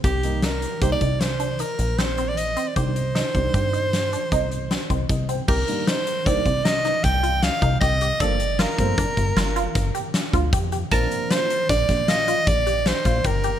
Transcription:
<<
  \new Staff \with { instrumentName = "Soprano saxophone" } { \time 7/4 \key c \dorian \tempo 4 = 154 g'4 bes'4 c''16 d''8. c''4 bes'4 c''8. d''16 ees''8. d''16 | c''1. r4 | bes'4 c''4 d''4 ees''4 g''4 f''4 ees''4 | d''4 bes'1 r2 |
bes'4 c''4 d''4 ees''4 d''4 c''4 bes'4 | }
  \new Staff \with { instrumentName = "Synth arpeggio sound" } { \time 7/4 \key c \dorian g'4 ees'4 g'8 ees'4 d'8 ees'4 c'8 c'4 c'8 | g'4 ees'4 g'8 ees'4 d'8 ees'4 c'8 c'4 c'8 | g'4 ees'4 c'4 ees'8 ees'4 f'4 ees'8 g'8 g'8 | a'4 f'4 d'4 f'8 f'4 g'4 f'8 g'8 g'8 |
a''4 f'4 d'4 f'8 f'4 g'4 f'8 g'8 g'8 | }
  \new Staff \with { instrumentName = "Grand piano" } { \time 7/4 \key c \dorian r8 <ees g bes ees'>8 r4 <ees g bes ees'>8 r1 r8 | <ees g c' d'>8 r4 <ees g c' d'>4. r2. ees''8 g''8 | r8 <ees g bes d'>8 r4 <ees g bes d'>8 r1 r8 | <f a bes d'>8 r4 <f a bes c'>8 r1 r4 |
<f bes c' d'>4. r1 r4. | }
  \new Staff \with { instrumentName = "Analog synth bass" } { \clef bass \time 7/4 \key c \dorian c,2 c,8 c,2 bes,,2~ bes,,8 | c,4. c,8 g,2 c,4. c,8 c,4 | c,8 r4. c,8 c,4. c,4. c,8 c,4 | g,,4. g,,8 g,,16 r16 g,,8 g,,4 g,,8 r4 d,8 f,4 |
bes,,8 r4. bes,,8 bes,,4. bes,,4. bes,,8 g,,4 | }
  \new DrumStaff \with { instrumentName = "Drums" } \drummode { \time 7/4 <hh bd>8 hh8 <hh sn>8 hh8 <hh bd>8 <hh bd>8 <hh sn>8 hh8 hh8 hh8 <hh sn>8 hh8 hh8 hh8 | <hh bd>8 hh8 <hh sn>8 <hh bd>8 <hh bd>8 hh8 <hh sn>8 hh8 <hh bd>8 hh8 <hh sn>8 <hh bd>8 <hh bd>8 hh8 | <cymc bd>8 hh8 <hh sn>8 hh8 <hh bd>8 <hh bd>8 <hh sn>8 <hh sn>8 <hh bd sn>8 hh8 <hh sn>8 <hh bd>8 <hh bd sn>8 hh8 | <hh bd>8 hh8 <hh sn>8 <hh bd>8 <hh bd>8 <hh bd>8 <hh sn>8 hh8 <hh bd sn>8 hh8 <hh sn>8 <hh bd>8 <hh bd>8 hh8 |
<hh bd>8 hh8 <hh sn>8 hh8 <hh bd sn>8 <hh bd sn>8 <hh sn>8 hh8 <hh bd>8 hh8 <hh sn>8 <hh bd sn>8 <hh bd>8 hh8 | }
>>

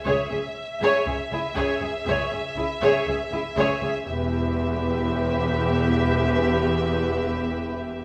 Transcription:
<<
  \new Staff \with { instrumentName = "Violin section" } { \time 4/4 \key cis \dorian \tempo 4 = 60 e''1 | e''1 | }
  \new Staff \with { instrumentName = "Viola section" } { \time 4/4 \key cis \dorian gis'16 gis'16 r16 gis'16 gis'16 gis'16 gis'16 gis'16 gis'16 gis'16 gis'16 gis'16 gis'16 gis'16 gis'16 gis'16 | g'1 | }
  \new Staff \with { instrumentName = "Violin section" } { \time 4/4 \key cis \dorian cis''16 gis'16 r16 cis''16 gis'16 e'16 cis''16 gis'16 cis''16 gis'16 e'16 cis''16 gis'16 e'16 cis''16 gis'16 | b'1 | }
  \new Staff \with { instrumentName = "Cello section" } { \clef bass \time 4/4 \key cis \dorian cis,16 cis,16 r16 cis,16 cis,16 cis,16 cis,16 cis,16 cis,16 cis,16 cis,16 cis,16 cis,16 cis,16 cis,16 cis,16 | e,1 | }
  \new Staff \with { instrumentName = "Double bass section" } { \clef bass \time 4/4 \key cis \dorian cis,16 r8. cis,16 r16 cis,16 r16 cis,16 r16 cis,16 r16 cis,16 r16 cis,16 r16 | e,,1 | }
>>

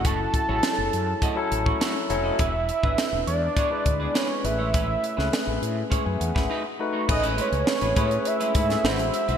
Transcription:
<<
  \new Staff \with { instrumentName = "Analog synth lead" } { \time 4/4 \key a \lydian \tempo 4 = 102 a''2. r4 | e''4. d''4. cis''8 e''8~ | e''4. r2 r8 | dis''8 cis''4. e''4. e''8 | }
  \new Staff \with { instrumentName = "Clean electric guitar" } { \time 4/4 \key a \lydian <a e' fis' cis''>16 r8 <a e' fis' cis''>16 r4 <a e' fis' dis''>16 r8 <a e' fis' cis''>16 <a e' fis' cis''>16 r8 <a e' fis' dis''>16 | <b d' gis' b'>16 r8 <b d' gis' b'>16 r4 <b d' gis' cis''>16 r8 <b d' gis' b'>16 <b d' gis' b'>16 r8 <gis cis' e' cis''>16 | <gis cis' e' b'>16 r8 <gis cis' e' b'>16 r4 <gis cis' e' cis''>16 r8 <gis cis' e' b'>16 <a dis' fis' b'>16 r8 <a dis' fis' cis''>16 | r16 <gis cis' e' b'>16 <gis cis' e' b'>16 r8 <gis cis' e' b'>16 <gis cis' e' b'>16 r8 <gis cis' e' b'>16 <gis cis' e' b'>16 r16 <gis bis fis' b'>16 r8 <gis bis fis' b'>16 | }
  \new Staff \with { instrumentName = "Tine electric piano" } { \time 4/4 \key a \lydian <fis cis' e' a'>8 r16 <fis cis' e' gis' a'>4 r8 <fis cis' e' a'>4 r16 <fis cis' e' a'>8 | r8. <gis d' e' b'>4 r8 <gis d' e' b'>4 r16 <a cis' gis' b'>8~ | <a cis' gis' b'>8 r16 <a cis' gis' b'>4 r16 <gis' e''>16 <b' gis''>16 <a' fis''>16 <gis' e''>8 r16 <a dis' fis' b'>8 | <a cis' gis' b'>4 r8 <a cis' gis' b'>4 r16 <a cis' gis' cis''>16 <gis e' fis' bis'>8. r16 | }
  \new Staff \with { instrumentName = "Fretless electric bass" } { \clef bass \time 4/4 \key a \lydian fis,,8. a,,16 r16 fis,,16 fis,8 r8 a,,8 r8 f,,8 | e,,8. gis,,16 r16 e,,16 e,8 r8 d,8 r8 a,,8~ | a,,8. cis,16 r16 a,,16 a,8 r16 fis,16 e,16 gis,,16 r4 | a,,8. cis,16 r16 a,,16 a,8 r8 gis,8 gis,,16 a,,16 r16 b,,16 | }
  \new DrumStaff \with { instrumentName = "Drums" } \drummode { \time 4/4 <hh bd>8 <hh bd>8 <hh sn>8 hh8 <hh bd>8 hh16 bd16 <hh sn>8 hh8 | <hh bd>8 hh16 bd16 <hh sn>8 hh8 <hh bd>8 <hh bd>8 <hh sn>8 hh8 | <hh bd>8 hh16 sn16 <hh sn>8 hh8 <hh bd>8 hh16 <bd sn>16 r4 | <cymc bd>16 hh16 hh16 hh16 sn16 hh16 <hh bd>16 hh16 hh16 hh16 <hh bd>16 <hh sn>16 sn16 hh16 hh16 hh16 | }
>>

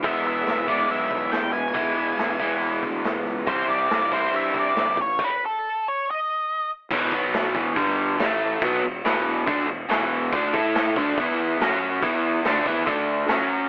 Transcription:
<<
  \new Staff \with { instrumentName = "Lead electric guitar" } { \time 4/4 \key e \mixolydian \tempo 4 = 140 e''8 e''4 d''8 e''4 g''8 gis''8~ | gis''2~ gis''8 r4. | c''8 d''4 c''8 e''8 d''4 cis''8 | b'8 a'4 cis''8 dis''4. r8 |
r1 | r1 | r1 | r1 | }
  \new Staff \with { instrumentName = "Overdriven electric guitar" } { \clef bass \time 4/4 \key e \mixolydian <e gis b e'>4. <e gis b e'>2~ <e gis b e'>8 | <e gis b e'>4. <e gis b e'>2~ <e gis b e'>8 | <c e g c' e'>4. <c e g c' e'>2 r8 | r1 |
<e, b, e>8 <b, fis b>4 <e, b, e>8 <g, d g>4 <a, e a>4 | <b, fis b>8 <e, b,>8 <e, b, e>4 <d a d'>8 <e, b,>8 <e, b, e>4 | <d a d'>8 <a e' a'>4 <d a d'>8 <e b e'>4 <fis cis' fis'>4 | <e b e'>4 <d a d'>8 <e b e'>8 <d a d'>4 <fis cis' fis'>4 | }
  \new Staff \with { instrumentName = "Fingered electric bass" } { \clef bass \time 4/4 \key e \mixolydian e,,8 e,,8 e,,4 b,,4 e,8 e,,8 | e,,8 e,,8 e,,8 e,,8 e,,8 d,8 e,,8 cis,8 | c,8 c,8 c,4 g,4 g,,8 a,,8 | r1 |
e,,8 b,,4 e,,8 g,,4 a,,4 | b,,8 e,,8 e,,4 d,8 e,,8 e,,4 | d,8 a,4 d,8 e,4 fis,4 | e,4 d,8 e,8 d,4 fis,4 | }
  \new DrumStaff \with { instrumentName = "Drums" } \drummode { \time 4/4 <hho bd>8 hho8 <hho sn>8 <hho bd>8 hho8 <hho bd>8 <hho sn>8 hho8 | <hho bd>8 hho8 <hho sn>8 <hho bd>8 hho8 <hho bd>8 <hho sn>8 hho8 | <hho bd>8 hho8 <hho sn>8 <hho bd>8 hho8 <hho bd>8 <hho sn>8 <hho bd>8 | <cymc bd>4 r4 r4 r4 |
<cymc bd>8 bd8 <cymc sn>8 bd8 <cymc bd>16 sn8. <cymc sn>4 | <cymc bd>4 <cymc sn>8 sn8 <cymc bd>16 sn8. <cymc sn>4 | <cymc bd>8 bd8 <cymc sn>8 <bd sn>8 <cymc bd>16 sn8. <cymc sn>4 | <cymc bd>4 <cymc sn>8 bd8 <cymc bd>4 <cymc sn>4 | }
>>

